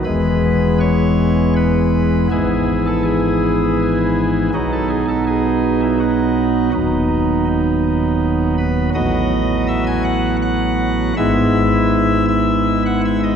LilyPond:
<<
  \new Staff \with { instrumentName = "Pipe organ" } { \time 3/4 \key e \major \tempo 4 = 81 b'4 cis''4 b'4 | gis'8. a'16 gis'2 | fis'16 a'16 gis'16 a'16 gis'8. e'16 fis'4 | dis'4 dis'4. b'8 |
dis''4 e''16 gis''16 fis''8 fis''4 | e''4. e''8. fis''16 e''16 dis''16 | }
  \new Staff \with { instrumentName = "Pipe organ" } { \clef bass \time 3/4 \key e \major <e,, e, e gis b>2. | <gis,, gis, e b e'>2. | <b,, b, fis b dis'>2. | <dis,, dis, fis b>2. |
<a,, a, fis b fis'>2. | <gis,, gis, gis b e'>2. | }
>>